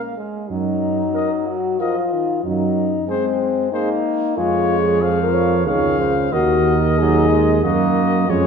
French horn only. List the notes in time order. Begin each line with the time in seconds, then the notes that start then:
Already playing: C#4
0.50 D#4
1.47 F#4
1.80 F4
2.44 D#4
3.08 C4
3.72 D#4
4.36 F4
4.80 G#4
5.23 A#4
5.66 G#4
6.33 F#4
6.98 D#4
8.29 C#4